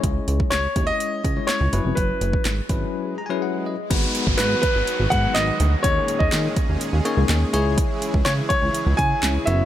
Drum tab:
CC |----------------|----------------|x---------------|----------------|
HH |x-x-x-x-x-x-x-x-|x-x-x-x---------|x-x-x-x-x-x-x-x-|x-x-x-x-x-x-x-x-|
CP |----x-------x---|----x-----------|----x-------x---|----x-------x---|
SD |----o-------o---|----o-----------|----o-------o---|----o-------o---|
BD |o--o--o---o-----|o--o--o---------|o--o--o---o-----|o--o--o---------|

CC |----------------|
HH |x-x-x-x-x-x-x-x-|
CP |----x-------x---|
SD |----o-------o---|
BD |o--o--o---o-----|